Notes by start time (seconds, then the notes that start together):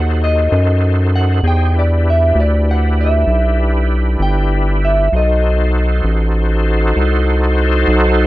Already playing: D#2 D#4 F#4 A4 C5 F#5
0.24 D#5
0.52 F#2
1.16 F#5
1.43 E2 D#4 G4 G#4 C5
1.47 G5
1.74 D4 E4 G4 B4
1.79 D5
2.10 E5
2.35 D2
2.40 D5
2.71 F#5
3.01 E5
3.27 B1
4.19 G1 G5
4.85 E5
5.12 B1 D#4 F#4 A4 C5
5.17 D#5
6.04 A1
6.96 C2
7.88 B1